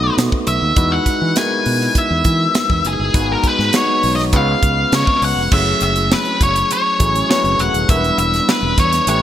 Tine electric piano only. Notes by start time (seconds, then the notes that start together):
Already playing: A3 B3 D#4 F#4 B4
0.76 G#3 D#4 E4 F#4 B4
1.36 G#3 B3 E4 F#4 A#4
1.43 B4
3.14 G#3 B3 D#4 F#4 B4
3.74 G#3 B3 D#4 F#4 C#5
4.32 G#3 B3 C#4 F4 B4
5.52 F#3 A3 C#4 E4 G#4
7.00 F#3 A3 C#4 E4 G#4
7.29 F#3 A3 C#4 E4 B4
7.89 G3 B3 D4 E4 A#4
7.97 B4
9.08 A3 C#4 E4 G4 B4